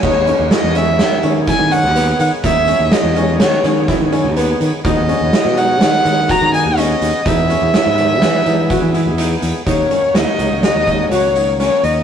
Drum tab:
CC |x---------|----------|----------|----------|
HH |-xxxxxxxxx|xxxxxxxxxx|xxxxxxxxxx|xxxxxxxxxx|
SD |--o-o-o---|--o-ooo---|--o-oo----|--o-o-----|
BD |o-----o---|o-----o---|o-----o---|o-----o---|

CC |----------|
HH |xxxxxxxxxx|
SD |--o-o---o-|
BD |o----o----|